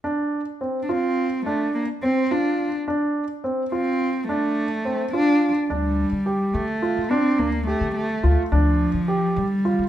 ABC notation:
X:1
M:5/8
L:1/16
Q:1/4=106
K:Dm
V:1 name="Grand piano"
D4 C2 F4 | D4 C2 F4 | D4 C2 F4 | D4 C2 F4 |
D4 G4 F2 | D4 G4 F2 | D4 G4 F2 |]
V:2 name="Cello"
z4 z3/2 D/2 C4 | A,2 B,2 C2 D3 z | z6 C4 | A,6 D3 z |
G,6 A,4 | C2 B,2 A,2 A,3 z | F,6 G,4 |]
V:3 name="Upright bass" clef=bass
z8 z2 | z8 z2 | z8 z2 | z8 z2 |
D,,3 D,2 z D,3 D,- | D,2 D,,3 D,3 D,, z | D,,3 D,2 z D,3 D, |]